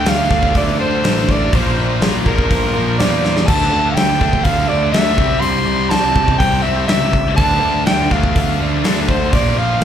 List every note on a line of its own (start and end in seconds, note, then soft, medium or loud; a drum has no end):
0.00 0.28 D3 medium
0.00 0.29 A3 loud
0.00 0.29 D4 loud
0.00 1.52 D4 medium
0.00 1.52 A4 medium
0.00 1.51 F5 medium
0.06 0.29 D2 medium
0.06 0.56 F5 loud
0.06 snare loud
0.06 open hi-hat medium
0.30 0.53 D2 medium
0.30 1.03 A3 medium
0.30 1.08 D4 medium
0.30 kick medium
0.30 snare soft
0.34 1.02 D3 medium
0.43 kick medium
0.55 0.78 D2 loud
0.55 0.79 D5 loud
0.55 kick loud
0.55 open hi-hat medium
0.79 1.02 D2 medium
0.79 1.03 D3 medium
0.79 1.03 A3 medium
0.79 1.07 D4 medium
0.79 1.32 C5 loud
1.03 1.49 A1 medium
1.03 1.51 D3 medium
1.03 1.52 A3 medium
1.03 snare loud
1.03 open hi-hat medium
1.08 1.56 D4 medium
1.29 1.56 D5 medium
1.29 kick medium
1.52 1.76 A#1 medium
1.52 2.24 A#2 medium
1.52 2.28 F3 medium
1.52 3.47 A#3 medium
1.52 3.47 F4 medium
1.52 3.47 C5 medium
1.52 2.03 C5 medium
1.52 kick loud
1.52 open hi-hat medium
1.57 2.25 A#3 loud
1.77 2.00 A#1 medium
2.02 2.24 A#1 medium
2.02 snare loud
2.02 open hi-hat medium
2.26 2.48 A#1 medium
2.26 2.99 F3 medium
2.26 2.98 A#3 medium
2.26 2.96 A#4 medium
2.26 kick medium
2.30 2.98 A#2 medium
2.38 kick medium
2.51 2.73 A#1 loud
2.51 kick loud
2.51 open hi-hat medium
2.75 2.98 A#1 medium
2.75 2.98 A#2 medium
2.75 2.99 F3 medium
2.75 2.98 A#3 medium
2.98 3.45 E2 medium
2.98 3.47 A#2 medium
2.98 3.47 F3 medium
2.98 3.48 D5 medium
2.98 snare loud
2.98 open hi-hat medium
3.03 3.48 A#3 medium
3.25 snare medium
3.37 snare loud
3.47 3.71 D2 medium
3.47 4.19 D3 loud
3.47 4.20 A3 loud
3.47 5.17 D4 medium
3.47 4.18 D4 loud
3.47 5.17 A4 medium
3.47 5.17 E5 medium
3.47 3.89 A5 loud
3.47 kick loud
3.47 crash loud
3.73 3.95 D2 medium
3.91 3.96 F5 medium
3.91 4.46 G5 loud
3.97 4.19 D2 medium
3.97 snare loud
3.97 open hi-hat medium
4.20 4.44 D2 medium
4.20 4.91 D3 medium
4.20 4.93 A3 medium
4.20 4.92 D4 medium
4.20 kick medium
4.20 snare soft
4.33 kick medium
4.44 4.68 D2 loud
4.44 4.70 F5 loud
4.44 kick loud
4.44 open hi-hat medium
4.68 4.92 D2 medium
4.68 4.91 D3 medium
4.68 4.93 A3 medium
4.68 4.92 D4 medium
4.68 4.91 D5 loud
4.92 5.17 D2 medium
4.92 5.16 D3 medium
4.92 5.17 A3 medium
4.92 5.42 E5 loud
4.92 snare loud
4.92 open hi-hat medium
4.96 5.18 D4 medium
5.16 5.41 C2 medium
5.16 5.89 C3 medium
5.16 5.90 G3 loud
5.16 7.36 C4 medium
5.16 5.91 C4 medium
5.16 7.37 G4 medium
5.16 7.36 D5 medium
5.16 kick loud
5.40 5.65 C2 loud
5.40 5.91 C6 loud
5.40 open hi-hat medium
5.66 5.89 C2 medium
5.90 6.14 C2 medium
5.90 6.63 C3 medium
5.90 6.64 G3 medium
5.90 6.37 A5 loud
5.90 snare loud
5.90 open hi-hat medium
5.94 6.61 C4 medium
6.16 6.38 C2 medium
6.16 kick medium
6.28 kick medium
6.38 6.63 C2 medium
6.38 6.63 C3 medium
6.38 6.64 G3 medium
6.38 6.64 G5 loud
6.38 kick loud
6.38 open hi-hat medium
6.43 6.63 C4 medium
6.62 6.87 C2 medium
6.62 7.13 C3 medium
6.62 7.12 G3 medium
6.62 7.11 C4 medium
6.62 6.87 E5 loud
6.87 7.34 C#2 medium
6.87 7.34 E5 medium
6.87 snare loud
6.87 open hi-hat medium
7.13 kick medium
7.35 7.60 D2 loud
7.35 8.08 D3 medium
7.35 8.10 A3 medium
7.35 9.31 A4 medium
7.35 9.32 F5 medium
7.35 7.82 A5 loud
7.35 kick loud
7.35 open hi-hat medium
7.39 9.32 D4 medium
7.39 8.08 D4 medium
7.62 7.85 D2 medium
7.86 8.09 D2 medium
7.86 8.14 G5 medium
7.86 snare loud
7.86 open hi-hat medium
8.09 8.34 D2 medium
8.09 8.82 D3 medium
8.09 8.83 A3 medium
8.09 8.82 D4 medium
8.09 8.60 F5 medium
8.09 kick medium
8.09 snare soft
8.23 kick medium
8.35 8.58 D2 medium
8.35 kick loud
8.35 open hi-hat medium
8.59 8.83 D2 medium
8.59 8.83 D3 medium
8.59 8.83 A3 medium
8.59 8.82 D4 medium
8.83 9.34 D2 medium
8.83 9.31 D3 medium
8.83 9.32 A3 medium
8.83 snare loud
8.83 open hi-hat medium
8.87 9.33 D4 medium
9.08 9.35 C5 medium
9.08 kick medium
9.32 9.56 A#1 medium
9.32 9.84 A#2 medium
9.32 9.84 F3 loud
9.32 9.84 A#3 medium
9.32 9.84 F4 medium
9.32 9.84 C5 medium
9.32 9.50 D5 loud
9.32 kick loud
9.32 open hi-hat medium
9.50 9.60 D5 medium
9.56 9.79 A#1 medium
9.56 9.84 F5 loud
9.81 9.84 A#1 medium